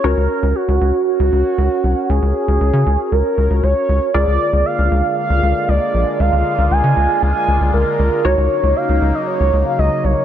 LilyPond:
<<
  \new Staff \with { instrumentName = "Soft synth lead" } { \time 4/4 \key bes \minor \tempo 4 = 117 bes'4 ges'4 ges'2 | aes'2 bes'4 des''4 | d''4 f''4 f''4 d''4 | f''4 aes''4 aes''4 bes'4 |
des''4 f''8. ees''16 des''8. f''16 ees''8 des''8 | }
  \new Staff \with { instrumentName = "Analog polysynth" } { \time 4/4 \key bes \minor <des' ges' bes' des''>1~ | <des' ges' bes' des''>1 | <f' aes' bes' d''>1~ | <f' aes' bes' d''>1 |
<ees' ges' bes' des''>1 | }
  \new Staff \with { instrumentName = "Analog synth pad" } { \time 4/4 \key bes \minor r1 | r1 | <d aes bes f'>1~ | <d aes bes f'>1 |
<des ges bes ees'>1 | }
  \new Staff \with { instrumentName = "Analog synth bass" } { \clef bass \time 4/4 \key bes \minor des,16 des,16 r16 des,16 r16 des,16 des,16 r8 des,16 des,16 r16 des,16 r16 c,16 r16 | des,16 des,16 r16 des,16 des,16 des16 des,16 r16 des,16 r16 des,16 des,16 des,16 r16 des,16 r16 | des,16 des,16 r16 des,16 r16 des,16 des,16 r8 des,16 des,16 r16 des,16 r16 bes,,16 r16 | des,16 des,16 r16 des,16 des,16 des16 des,16 r16 des,16 r16 des,16 des,16 des,16 r16 des,16 r16 |
des,16 des,16 r16 des,16 r16 des,16 des,16 r8 des,16 des,16 r16 des,16 r16 c,16 r16 | }
>>